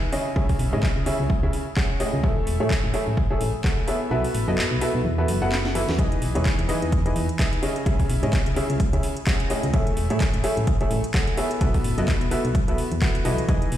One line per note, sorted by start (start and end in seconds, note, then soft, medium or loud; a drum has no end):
0.00 0.10 D#4 medium
0.00 0.10 E4 medium
0.00 0.10 G#4 medium
0.00 0.10 B4 medium
0.00 0.10 E5 medium
0.12 0.33 C#3 medium
0.12 0.33 C#4 medium
0.12 0.33 E4 medium
0.12 0.33 G#4 medium
0.12 0.33 C#5 medium
0.12 0.33 D#5 loud
0.12 open hi-hat medium
0.36 0.47 C#2 loud
0.36 0.70 C#3 medium
0.36 0.70 C#4 medium
0.36 0.70 E4 medium
0.36 0.70 G#4 medium
0.36 0.70 C#5 medium
0.36 0.70 E5 loud
0.36 kick loud
0.49 kick medium
0.49 open hi-hat medium
0.59 0.71 B1 medium
0.59 open hi-hat loud
0.73 0.81 G#1 loud
0.73 1.04 C#3 medium
0.73 1.04 C#4 medium
0.73 1.04 E4 medium
0.73 1.04 G#4 medium
0.73 1.04 C#5 medium
0.73 1.04 D#5 medium
0.83 kick loud
0.83 clap loud
0.96 1.05 C#2 medium
1.06 1.27 C#3 medium
1.06 1.27 C#4 medium
1.06 1.27 E4 medium
1.06 1.27 G#4 medium
1.06 1.27 C#5 medium
1.06 1.27 E5 loud
1.06 open hi-hat loud
1.20 1.50 C#2 medium
1.30 kick loud
1.43 1.63 C#3 medium
1.43 1.63 C#4 medium
1.43 1.63 E4 medium
1.43 1.63 G#4 medium
1.43 1.63 C#5 medium
1.43 1.63 E5 medium
1.53 open hi-hat loud
1.76 1.98 C#3 medium
1.76 1.98 C#4 medium
1.76 1.98 E4 medium
1.76 1.98 G#4 medium
1.76 1.98 C#5 medium
1.76 1.98 F#5 medium
1.76 kick loud
1.76 clap loud
2.00 2.21 A2 medium
2.00 2.21 C#4 medium
2.00 2.21 E4 medium
2.00 2.21 G#4 medium
2.00 2.21 C#5 medium
2.00 2.21 D#5 loud
2.00 open hi-hat medium
2.13 2.22 C#2 loud
2.23 2.35 A1 loud
2.23 2.57 A3 medium
2.23 2.57 E4 medium
2.23 2.57 G#4 medium
2.23 2.57 A4 medium
2.23 2.57 C#5 medium
2.23 2.57 E5 loud
2.23 kick loud
2.47 2.58 E1 medium
2.47 open hi-hat loud
2.60 2.69 A2 loud
2.60 2.91 A3 medium
2.60 2.91 E4 medium
2.60 2.91 G#4 medium
2.60 2.91 A4 medium
2.60 2.91 C#5 medium
2.60 2.91 E5 medium
2.70 kick loud
2.70 clap loud
2.84 2.92 A1 medium
2.94 3.14 A3 medium
2.94 3.14 E4 medium
2.94 3.14 G#4 medium
2.94 3.14 A4 medium
2.94 3.14 C#5 medium
2.94 3.14 E5 loud
2.94 open hi-hat loud
3.07 3.38 A1 medium
3.17 kick loud
3.30 3.50 A3 medium
3.30 3.50 E4 medium
3.30 3.50 G#4 medium
3.30 3.50 A4 medium
3.30 3.50 C#5 medium
3.30 3.50 E5 medium
3.41 3.52 A1 loud
3.41 open hi-hat loud
3.64 3.85 A3 medium
3.64 3.85 E4 medium
3.64 3.85 G#4 medium
3.64 3.85 A4 medium
3.64 3.85 C#5 medium
3.64 3.85 F#5 medium
3.64 kick loud
3.64 clap loud
3.88 4.08 B3 medium
3.88 4.08 E4 medium
3.88 4.08 G#4 medium
3.88 4.08 A4 medium
3.88 4.08 C#5 medium
3.88 4.08 E5 loud
3.88 open hi-hat medium
4.11 4.22 B1 medium
4.11 4.45 B3 medium
4.11 4.45 E4 medium
4.11 4.45 F#4 medium
4.11 4.45 A4 medium
4.11 4.45 B4 medium
4.11 4.45 E5 loud
4.24 open hi-hat medium
4.34 4.46 A1 medium
4.34 open hi-hat loud
4.48 4.56 F#1 loud
4.48 4.79 B3 medium
4.48 4.79 E4 medium
4.48 4.79 F#4 medium
4.48 4.79 A4 medium
4.48 4.79 B4 medium
4.48 4.79 D#5 loud
4.58 clap loud
4.71 4.80 B1 medium
4.81 5.02 B3 medium
4.81 5.02 E4 medium
4.81 5.02 F#4 medium
4.81 5.02 A4 medium
4.81 5.02 B4 medium
4.81 5.02 E5 loud
4.81 open hi-hat loud
4.95 5.04 B1 loud
5.05 5.25 E2 loud
5.18 5.38 B3 medium
5.18 5.38 E4 medium
5.18 5.38 F#4 medium
5.18 5.38 A4 medium
5.18 5.38 B4 medium
5.18 5.38 E5 medium
5.28 5.85 F#1 medium
5.28 open hi-hat loud
5.42 5.73 B3 medium
5.42 5.73 E4 medium
5.42 5.73 F#4 medium
5.42 5.73 A4 medium
5.42 5.73 B4 medium
5.42 5.73 F#5 loud
5.52 snare medium
5.52 clap loud
5.65 snare medium
5.75 5.96 E3 medium
5.75 5.96 E4 medium
5.75 5.96 F#4 medium
5.75 5.96 A4 medium
5.75 5.96 B4 medium
5.75 5.96 E5 medium
5.75 open hi-hat loud
5.89 5.97 E2 loud
5.89 snare medium
5.98 6.10 E2 loud
5.98 6.32 E3 medium
5.98 6.32 D#4 medium
5.98 6.32 E4 medium
5.98 6.32 G#4 medium
5.98 6.32 B4 medium
5.98 6.32 D#5 loud
5.98 kick loud
5.98 closed hi-hat medium
6.12 closed hi-hat soft
6.22 6.33 B1 medium
6.22 open hi-hat loud
6.35 6.44 E1 loud
6.35 6.66 E3 medium
6.35 6.66 D#4 medium
6.35 6.66 E4 medium
6.35 6.66 G#4 medium
6.35 6.66 B4 medium
6.35 6.66 C#5 loud
6.35 closed hi-hat soft
6.45 kick loud
6.45 clap loud
6.45 closed hi-hat medium
6.59 6.67 E2 medium
6.59 closed hi-hat soft
6.69 6.89 E3 loud
6.69 6.89 D#4 medium
6.69 6.89 E4 medium
6.69 6.89 G#4 medium
6.69 6.89 B4 medium
6.69 6.89 D#5 loud
6.69 open hi-hat loud
6.82 7.13 E2 medium
6.82 closed hi-hat soft
6.92 kick loud
6.92 closed hi-hat medium
7.06 7.25 E3 medium
7.06 7.25 D#4 medium
7.06 7.25 E4 medium
7.06 7.25 G#4 medium
7.06 7.25 B4 medium
7.06 7.25 D#5 medium
7.06 closed hi-hat soft
7.16 7.27 E2 loud
7.16 open hi-hat loud
7.29 closed hi-hat soft
7.39 7.60 D#4 medium
7.39 7.60 E4 medium
7.39 7.60 G#4 medium
7.39 7.60 B4 medium
7.39 7.60 E5 medium
7.39 kick loud
7.39 clap loud
7.39 closed hi-hat medium
7.53 closed hi-hat soft
7.63 7.83 C#3 medium
7.63 7.83 C#4 medium
7.63 7.83 E4 medium
7.63 7.83 G#4 medium
7.63 7.83 C#5 medium
7.63 7.83 D#5 loud
7.63 open hi-hat loud
7.76 closed hi-hat soft
7.86 7.97 C#2 loud
7.86 8.20 C#3 medium
7.86 8.20 C#4 medium
7.86 8.20 E4 medium
7.86 8.20 G#4 medium
7.86 8.20 C#5 medium
7.86 8.20 E5 loud
7.86 kick loud
7.86 closed hi-hat medium
8.00 kick medium
8.00 open hi-hat medium
8.10 8.21 B1 medium
8.10 open hi-hat loud
8.23 8.31 G#1 loud
8.23 8.54 C#3 medium
8.23 8.54 C#4 medium
8.23 8.54 E4 medium
8.23 8.54 G#4 medium
8.23 8.54 C#5 medium
8.23 8.54 D#5 loud
8.23 closed hi-hat soft
8.33 kick loud
8.33 clap loud
8.33 closed hi-hat medium
8.46 8.55 C#2 medium
8.46 closed hi-hat soft
8.56 8.77 C#3 medium
8.56 8.77 C#4 medium
8.56 8.77 E4 medium
8.56 8.77 G#4 medium
8.56 8.77 C#5 medium
8.56 8.77 E5 loud
8.56 open hi-hat loud
8.70 9.00 C#2 loud
8.70 closed hi-hat soft
8.80 kick loud
8.80 closed hi-hat medium
8.93 9.13 C#3 medium
8.93 9.13 C#4 medium
8.93 9.13 E4 medium
8.93 9.13 G#4 medium
8.93 9.13 C#5 medium
8.93 9.13 E5 medium
8.93 closed hi-hat soft
9.03 open hi-hat loud
9.17 closed hi-hat soft
9.27 9.48 C#3 medium
9.27 9.48 C#4 medium
9.27 9.48 E4 medium
9.27 9.48 G#4 medium
9.27 9.48 C#5 medium
9.27 9.48 F#5 medium
9.27 kick loud
9.27 clap loud
9.27 closed hi-hat medium
9.40 closed hi-hat soft
9.50 9.71 A2 medium
9.50 9.71 C#4 medium
9.50 9.71 E4 medium
9.50 9.71 G#4 medium
9.50 9.71 C#5 medium
9.50 9.71 D#5 loud
9.50 open hi-hat loud
9.63 9.72 C#2 medium
9.63 closed hi-hat soft
9.73 9.85 A1 loud
9.73 10.07 A3 medium
9.73 10.07 E4 medium
9.73 10.07 G#4 medium
9.73 10.07 A4 medium
9.73 10.07 C#5 medium
9.73 10.07 E5 loud
9.73 kick loud
9.73 closed hi-hat medium
9.87 closed hi-hat soft
9.97 10.08 E1 medium
9.97 open hi-hat loud
10.10 10.19 A2 loud
10.10 10.41 A3 medium
10.10 10.41 E4 medium
10.10 10.42 G#4 medium
10.10 10.41 A4 medium
10.10 10.41 C#5 medium
10.10 10.41 E5 loud
10.10 closed hi-hat soft
10.20 kick loud
10.20 clap loud
10.20 closed hi-hat medium
10.34 10.42 A1 medium
10.34 closed hi-hat soft
10.44 10.64 A3 medium
10.44 10.64 E4 medium
10.44 10.64 G#4 medium
10.44 10.64 A4 medium
10.44 10.65 C#5 medium
10.44 10.64 E5 loud
10.44 open hi-hat loud
10.57 10.88 A1 medium
10.57 closed hi-hat soft
10.67 kick loud
10.67 closed hi-hat medium
10.81 11.00 A3 medium
10.81 11.00 E4 medium
10.81 11.00 G#4 medium
10.81 11.00 A4 medium
10.81 11.00 C#5 medium
10.81 11.00 E5 medium
10.81 closed hi-hat soft
10.91 11.02 A1 loud
10.91 open hi-hat loud
11.04 closed hi-hat soft
11.14 11.35 A3 medium
11.14 11.35 E4 medium
11.14 11.35 G#4 medium
11.14 11.35 A4 medium
11.14 11.35 C#5 medium
11.14 11.35 F#5 medium
11.14 kick loud
11.14 clap loud
11.14 closed hi-hat medium
11.27 closed hi-hat soft
11.37 11.58 B3 medium
11.37 11.58 E4 medium
11.37 11.58 G#4 medium
11.37 11.58 A4 medium
11.37 11.58 C#5 medium
11.37 11.58 E5 loud
11.37 open hi-hat loud
11.51 closed hi-hat soft
11.61 11.72 B1 loud
11.61 11.95 B3 loud
11.61 11.95 E4 medium
11.61 11.95 F#4 medium
11.61 11.95 A4 medium
11.61 11.95 B4 medium
11.61 11.95 E5 loud
11.61 kick loud
11.61 closed hi-hat medium
11.74 kick medium
11.74 open hi-hat medium
11.84 11.96 A1 medium
11.84 open hi-hat loud
11.98 12.06 F#1 loud
11.98 12.29 B3 medium
11.98 12.29 E4 medium
11.98 12.29 F#4 medium
11.98 12.29 A4 medium
11.98 12.29 B4 medium
11.98 12.29 D#5 loud
11.98 closed hi-hat soft
12.08 kick loud
12.08 clap loud
12.08 closed hi-hat medium
12.21 12.30 B1 medium
12.21 closed hi-hat soft
12.31 12.52 B3 medium
12.31 12.52 E4 medium
12.31 12.52 F#4 medium
12.31 12.52 A4 medium
12.31 12.52 B4 medium
12.31 12.52 E5 loud
12.31 open hi-hat loud
12.45 12.75 B1 medium
12.45 closed hi-hat soft
12.55 kick loud
12.55 closed hi-hat medium
12.68 12.88 B3 medium
12.68 12.88 E4 medium
12.68 12.88 F#4 medium
12.68 12.88 A4 medium
12.68 12.88 B4 medium
12.68 12.88 E5 medium
12.68 closed hi-hat soft
12.78 open hi-hat loud
12.92 13.00 E2 loud
12.92 closed hi-hat soft
13.02 13.23 B3 medium
13.02 13.23 E4 medium
13.02 13.23 F#4 medium
13.02 13.23 A4 medium
13.02 13.23 B4 medium
13.02 13.23 F#5 medium
13.02 kick loud
13.02 clap loud
13.02 closed hi-hat medium
13.15 closed hi-hat soft
13.25 13.36 B1 loud
13.25 13.46 E3 medium
13.25 13.46 E4 medium
13.25 13.46 F#4 medium
13.25 13.46 A4 medium
13.25 13.46 B4 medium
13.25 13.46 D#5 loud
13.25 open hi-hat loud
13.38 closed hi-hat soft
13.48 13.60 E2 loud
13.48 13.77 E3 medium
13.48 13.77 D#4 medium
13.48 13.77 E4 medium
13.48 13.77 G#4 medium
13.48 13.77 B4 medium
13.48 13.77 D#5 loud
13.48 kick loud
13.48 closed hi-hat medium
13.62 closed hi-hat soft
13.72 13.77 B1 medium
13.72 open hi-hat loud